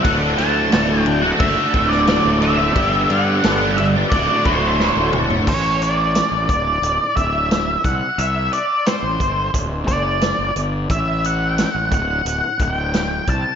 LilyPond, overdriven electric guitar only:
\new Staff \with { instrumentName = "Overdriven electric guitar" } { \time 4/4 \key d \mixolydian \tempo 4 = 88 <d, a, d a fis'>8 <a, d a fis'>8 <d, a, d a fis'>16 <d a fis'>8 <d a fis'>8 <d a fis'>16 <a, d a fis'>8 <d, a, d a fis'>8 <a, d a fis'>16 <d a fis'>16 | <g, d g b d' g'>8 <g b d' g'>8 <g, d g b d' g'>16 <g b d' g'>8 <g b d' g'>16 <d, a, d a fis'>16 <d a fis'>16 <a, d a fis'>8 <d, a, d a fis'>8 <a, d a fis'>16 <d a fis'>16 | r1 | r1 |
r1 | }